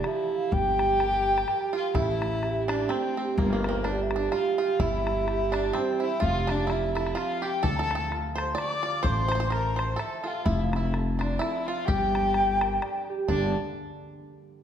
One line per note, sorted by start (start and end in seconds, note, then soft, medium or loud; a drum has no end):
0.00 1.00 A3 medium
0.00 0.53 E4 medium
0.00 2.09 F4 soft
0.00 0.61 C5 soft
0.04 0.57 F3 soft
0.04 0.99 G4 soft
0.04 1.00 A4 soft
0.04 0.33 E5 medium
0.04 bodhran medium
0.33 0.55 F5 loud
0.52 1.43 G1 loud
0.52 2.00 G3 medium
0.52 1.74 G4 loud
0.52 1.75 G5 loud
0.52 bodhran medium
0.79 bodhran medium
1.00 1.48 G4 medium
1.00 1.48 A4 soft
1.00 1.49 A#4 medium
1.00 bodhran medium
1.38 bodhran medium
1.48 2.42 G4 soft
1.48 3.68 A4 soft
1.48 2.01 A#4 soft
1.48 bodhran medium
1.73 1.93 F4 medium
1.73 1.94 F4 medium
1.73 1.99 F5 medium
1.94 2.85 A1 loud
1.94 2.89 A3 medium
1.94 2.65 E4 medium
1.94 2.69 E5 loud
1.94 bodhran medium
2.21 2.69 E4 medium
2.21 bodhran medium
2.42 3.17 G4 soft
2.42 bodhran medium
2.68 2.90 D4 medium
2.68 5.06 E4 medium
2.68 2.92 D5 medium
2.68 bodhran medium
2.89 6.22 A3 medium
2.89 3.36 C4 medium
2.89 3.14 C4 medium
2.89 3.18 C5 medium
2.89 bodhran medium
3.17 3.36 C4 medium
3.17 3.85 G4 medium
3.37 4.28 G1 loud
3.37 4.30 G3 medium
3.37 3.62 A#3 medium
3.37 3.52 A#3 medium
3.37 3.91 A#4 loud
3.37 bodhran medium
3.53 3.67 A#3 medium
3.64 3.83 C4 medium
3.64 4.11 D4 soft
3.64 bodhran medium
3.69 3.83 A#3 medium
3.84 3.99 D4 medium
3.84 4.58 G4 medium
3.84 bodhran medium
3.89 4.04 D5 loud
4.03 4.23 E5 medium
4.11 6.91 D4 medium
4.11 bodhran medium
4.16 4.31 D4 medium
4.21 4.34 D5 medium
4.31 4.78 G3 medium
4.31 4.57 F4 medium
4.31 bodhran medium
4.38 4.60 F5 medium
4.58 4.79 F4 medium
4.58 4.83 F4 medium
4.58 5.26 G4 medium
4.63 4.84 F5 loud
4.79 5.70 G1 loud
4.79 5.73 G3 medium
4.79 5.52 E4 medium
4.79 5.56 E4 medium
4.79 5.57 E5 loud
4.79 bodhran medium
5.07 5.53 E4 medium
5.07 bodhran medium
5.26 6.00 G4 medium
5.26 bodhran medium
5.52 5.72 D4 medium
5.52 5.77 D4 medium
5.52 6.29 E4 medium
5.52 5.79 D5 medium
5.52 bodhran medium
5.73 6.26 G3 medium
5.73 5.99 C4 medium
5.73 6.05 C4 medium
5.73 bodhran medium
5.78 6.03 C5 medium
6.00 6.19 E4 medium
6.00 6.21 E4 medium
6.00 8.36 G4 medium
6.00 6.26 E5 loud
6.20 7.12 F1 loud
6.20 7.68 F3 medium
6.20 6.46 F4 loud
6.20 6.52 F4 loud
6.20 bodhran medium
6.25 6.52 F5 loud
6.47 9.50 C4 medium
6.47 6.67 D4 medium
6.47 6.72 D4 medium
6.47 6.74 D5 medium
6.47 bodhran medium
6.67 6.93 E4 medium
6.67 6.97 E4 medium
6.67 7.43 F4 medium
6.67 bodhran medium
6.72 6.97 E5 loud
6.95 7.14 E4 medium
6.95 7.19 E4 medium
6.95 8.37 A4 medium
6.95 7.12 E5 medium
6.95 bodhran medium
7.07 bodhran medium
7.12 7.40 F4 medium
7.12 7.20 E5 medium
7.17 7.46 F4 medium
7.17 9.16 C5 medium
7.17 7.44 F5 loud
7.17 bodhran medium
7.42 8.10 F4 medium
7.42 7.61 G4 medium
7.42 7.63 G4 loud
7.42 7.65 G5 loud
7.62 8.54 D2 loud
7.62 9.10 D3 medium
7.62 7.78 A4 medium
7.62 7.79 A4 loud
7.62 7.77 A5 loud
7.62 bodhran medium
7.76 7.94 A4 loud
7.76 7.83 A#5 medium
7.81 7.95 A4 loud
7.81 7.96 A5 loud
7.91 9.05 A3 soft
7.91 7.99 G5 medium
7.91 bodhran medium
7.95 8.07 A4 medium
7.95 8.08 A4 medium
7.95 8.09 A5 loud
8.11 8.84 F4 medium
8.11 bodhran medium
8.35 9.52 A4 medium
8.35 8.54 C5 medium
8.35 8.48 C5 medium
8.35 8.60 C6 loud
8.35 bodhran medium
8.55 8.82 D5 loud
8.55 10.42 D5 medium
8.55 9.06 D5 medium
8.55 9.08 D6 loud
8.55 bodhran medium
8.83 9.38 F4 medium
8.83 9.02 D5 medium
9.03 9.95 A1 loud
9.03 12.38 A3 medium
9.03 9.27 C5 loud
9.03 9.52 C5 loud
9.03 9.54 C6 loud
9.03 bodhran medium
9.28 10.52 E4 soft
9.28 9.34 C5 medium
9.28 bodhran medium
9.35 9.39 C5 medium
9.40 9.50 C5 medium
9.50 10.24 A4 medium
9.50 9.76 A#4 medium
9.50 9.80 A#4 medium
9.50 9.80 A#5 loud
9.50 bodhran medium
9.76 9.96 C5 medium
9.76 10.01 C5 medium
9.76 11.20 C5 medium
9.76 10.01 C6 loud
9.76 bodhran medium
9.96 10.23 A4 medium
9.96 10.24 A4 medium
9.96 10.52 E5 medium
9.96 10.29 A5 medium
9.96 bodhran medium
10.24 10.45 F4 medium
10.24 10.46 F4 medium
10.24 10.93 A4 medium
10.24 10.48 F5 medium
10.44 11.36 F1 loud
10.44 11.93 F3 medium
10.44 10.61 E4 medium
10.44 10.60 E4 medium
10.44 10.62 E5 medium
10.44 bodhran medium
10.61 10.82 F5 medium
10.72 13.72 C4 medium
10.72 10.91 E4 medium
10.72 bodhran medium
10.76 10.91 E4 medium
10.76 10.95 E5 medium
10.93 11.42 A4 medium
10.93 bodhran medium
11.19 11.42 D4 medium
11.19 11.38 D4 medium
11.19 11.68 C5 medium
11.19 11.43 D5 medium
11.19 bodhran medium
11.39 11.65 E4 medium
11.39 11.68 E4 medium
11.39 12.68 A4 medium
11.39 11.69 E5 medium
11.39 bodhran medium
11.66 11.87 F4 medium
11.66 13.66 C5 medium
11.66 11.89 F5 loud
11.85 12.78 G1 loud
11.85 13.27 G3 medium
11.85 13.07 G4 loud
11.85 13.05 G4 medium
11.85 13.08 G5 loud
11.85 bodhran medium
12.15 12.34 D4 soft
12.15 bodhran medium
12.34 12.61 G4 medium
12.34 bodhran medium
12.61 12.82 A#4 medium
12.61 bodhran medium
12.82 13.08 D5 medium
12.82 bodhran medium
13.10 13.29 G4 medium
13.28 13.54 G1 loud
13.28 13.53 G2 medium
13.28 13.53 D3 medium
13.28 13.54 G3 medium
13.28 13.54 A#3 medium
13.28 13.54 D4 medium
13.28 13.54 D4 loud
13.28 13.54 D4 medium
13.28 13.54 A4 medium
13.28 13.54 D5 medium
13.28 bodhran medium